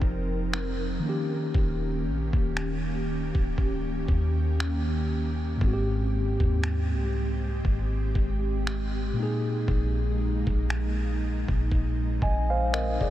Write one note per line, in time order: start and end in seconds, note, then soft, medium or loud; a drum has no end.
0.00 1.00 F1 loud
0.00 0.97 F3 medium
0.00 1.00 F3 medium
0.00 0.99 C4 medium
0.00 1.00 C4 medium
0.00 1.00 D#4 medium
0.00 1.01 D#4 medium
0.00 1.00 A#4 medium
0.00 1.06 A#4 medium
0.00 kick medium
0.53 finger snap loud
0.99 5.04 D#3 medium
0.99 5.06 A#3 medium
1.04 5.57 D#3 medium
1.04 5.57 A#3 medium
1.04 5.57 C#4 medium
1.04 5.08 C#4 medium
1.04 5.57 G4 medium
1.09 5.09 G4 medium
1.54 2.07 D#1 loud
1.54 kick loud
2.06 2.32 A#1 medium
2.33 3.31 D#1 loud
2.33 kick medium
2.57 finger snap loud
3.35 4.06 C#1 loud
3.35 kick medium
3.58 kick medium
4.08 5.57 D#2 loud
4.08 kick medium
4.60 finger snap loud
5.57 9.11 G#2 medium
5.57 9.13 G#3 medium
5.61 6.37 G#1 loud
5.61 13.10 G#3 medium
5.61 9.14 C4 medium
5.61 9.14 G4 medium
5.61 kick loud
5.67 5.71 F#4 medium
5.73 9.19 G4 medium
6.40 6.93 D#2 loud
6.40 kick medium
6.64 finger snap loud
6.91 7.61 C2 medium
7.65 8.14 G#1 loud
7.65 kick medium
8.15 9.13 G#1 loud
8.15 kick medium
8.67 finger snap loud
9.13 13.10 A#2 medium
9.13 13.10 A#3 medium
9.17 11.19 A#3 medium
9.17 13.10 D#4 medium
9.23 12.21 G#4 medium
9.68 10.43 A#1 loud
9.68 kick loud
10.47 11.44 A#1 loud
10.47 kick medium
10.70 finger snap loud
11.21 13.10 C4 medium
11.48 12.20 A#1 loud
11.48 kick medium
11.72 kick medium
12.22 12.97 A#1 loud
12.22 12.49 D#5 medium
12.22 12.49 G#5 medium
12.22 kick medium
12.50 12.72 C5 medium
12.50 12.72 F5 medium
12.73 13.00 A#4 medium
12.73 12.99 D#5 medium
12.73 finger snap loud
13.01 13.10 A#1 loud
13.01 13.10 G#4 medium
13.01 13.10 D5 medium
13.01 kick medium